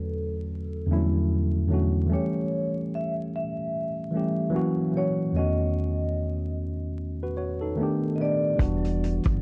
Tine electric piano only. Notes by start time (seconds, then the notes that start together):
Already playing: E2 D3 F#3 A3 C#4 F#4
0.87 E2 D3 F3
0.91 A3 C#4 E4
0.96 F#3
1.68 E2 D3 F#3 A3
1.72 C#4 F#4
2.07 E3 G3 A3
2.12 C#4 G4
4.11 E3 G3 A3
4.16 C#4 G4
4.49 E3 F#3 A#3
4.54 C#4 F#4
4.91 E3 F#3 A#3
4.97 C#4 F#4
5.32 E2 D3 A3 B3
5.38 D#3 C#4 F#4
7.23 F#4 B4
7.37 F#4 C#5
7.61 D#4 A4
7.76 D#3 A3 B3
7.81 D4 G4
8.17 D#3 A3 B3
8.22 D4 G4
8.56 E3 G3 B3
8.61 D4 F#4